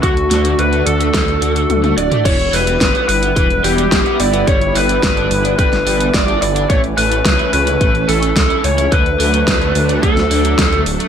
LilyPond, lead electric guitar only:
\new Staff \with { instrumentName = "Lead electric guitar" } { \time 4/4 \key e \dorian \tempo 4 = 108 fis'4 b'8 a'2 d''8 | cis''8 b'4 b'4 g'8 g'8 d''8 | cis''8 b'4. b'4 d''8 d''8 | cis''8 b'4 b'4 a'4 cis''8 |
b'2 a'4. r8 | }